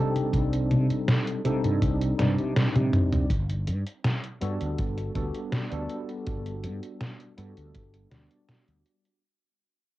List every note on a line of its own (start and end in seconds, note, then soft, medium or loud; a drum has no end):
0.00 1.40 G3 loud
0.00 1.40 C4 loud
0.00 1.41 D4 medium
0.00 1.41 D#4 medium
0.00 1.41 A4 loud
0.16 closed hi-hat soft
0.16 high conga soft
0.33 0.72 C2 loud
0.33 kick loud
0.33 closed hi-hat loud
0.33 high conga soft
0.53 closed hi-hat soft
0.71 0.86 C3 loud
0.71 closed hi-hat medium
0.71 high conga medium
0.90 closed hi-hat soft
0.90 high conga soft
1.08 snare loud
1.08 closed hi-hat loud
1.08 high conga soft
1.27 closed hi-hat soft
1.44 1.60 C3 loud
1.44 2.15 G3 medium
1.44 2.15 C4 medium
1.44 2.15 D4 medium
1.44 2.15 D#4 medium
1.44 2.15 A4 loud
1.44 closed hi-hat medium
1.44 high conga medium
1.64 1.78 G2 loud
1.64 closed hi-hat soft
1.64 high conga soft
1.82 2.12 C2 medium
1.82 kick loud
1.82 closed hi-hat medium
1.82 high conga soft
2.01 closed hi-hat soft
2.18 2.34 G2 medium
2.18 3.27 G3 medium
2.18 3.28 C4 medium
2.18 3.28 D4 medium
2.18 3.29 D#4 medium
2.18 3.29 D5 medium
2.18 snare medium
2.18 closed hi-hat medium
2.18 high conga medium
2.38 2.52 C3 medium
2.38 closed hi-hat soft
2.38 high conga soft
2.56 snare loud
2.56 closed hi-hat medium
2.56 high tom medium
2.56 high conga soft
2.75 3.24 C3 loud
2.75 closed hi-hat soft
2.75 high tom medium
2.93 closed hi-hat soft
2.93 mid tom medium
2.93 high conga medium
3.13 closed hi-hat soft
3.13 mid tom medium
3.13 high conga soft
3.30 3.69 G1 medium
3.30 kick loud
3.30 closed hi-hat loud
3.50 closed hi-hat soft
3.67 3.83 G2 loud
3.67 closed hi-hat medium
3.87 closed hi-hat soft
4.04 snare loud
4.04 closed hi-hat loud
4.24 closed hi-hat soft
4.41 4.57 G2 medium
4.41 5.11 G3 medium
4.41 5.11 B3 medium
4.41 5.11 D4 medium
4.41 5.11 F#4 medium
4.41 5.12 A4 loud
4.41 closed hi-hat medium
4.61 4.75 D2 medium
4.61 closed hi-hat soft
4.78 5.08 G1 medium
4.78 kick loud
4.78 closed hi-hat medium
4.98 closed hi-hat soft
5.15 5.31 D2 loud
5.15 5.67 G3 medium
5.15 5.67 B3 medium
5.15 5.67 D4 medium
5.15 5.67 F#4 medium
5.15 5.68 A4 medium
5.15 kick loud
5.15 closed hi-hat medium
5.34 closed hi-hat soft
5.52 snare loud
5.52 closed hi-hat medium
5.70 5.86 D2 loud
5.70 7.33 G3 loud
5.70 7.33 B3 medium
5.70 7.33 D4 medium
5.70 7.34 F#4 medium
5.70 7.34 A4 loud
5.70 closed hi-hat soft
5.89 closed hi-hat soft
6.09 closed hi-hat soft
6.27 6.65 G1 medium
6.27 kick loud
6.27 closed hi-hat loud
6.46 closed hi-hat soft
6.64 6.79 G2 medium
6.64 closed hi-hat medium
6.83 closed hi-hat soft
7.01 snare loud
7.01 closed hi-hat loud
7.20 closed hi-hat soft
7.37 7.53 G2 medium
7.37 8.07 G3 medium
7.37 8.07 B3 medium
7.37 8.08 D4 medium
7.37 8.08 F#4 medium
7.37 8.08 A4 medium
7.37 closed hi-hat medium
7.57 7.71 D2 medium
7.57 closed hi-hat soft
7.75 kick loud
7.75 closed hi-hat medium
7.94 closed hi-hat soft
8.10 8.27 D2 loud
8.10 9.20 G3 medium
8.10 9.20 B3 medium
8.10 9.21 D4 medium
8.10 9.21 F#4 medium
8.10 9.22 D5 medium
8.10 snare medium
8.10 closed hi-hat medium
8.31 closed hi-hat soft
8.49 snare loud
8.49 closed hi-hat medium
8.68 8.82 D2 loud
8.68 closed hi-hat soft
8.86 closed hi-hat soft
9.05 closed hi-hat soft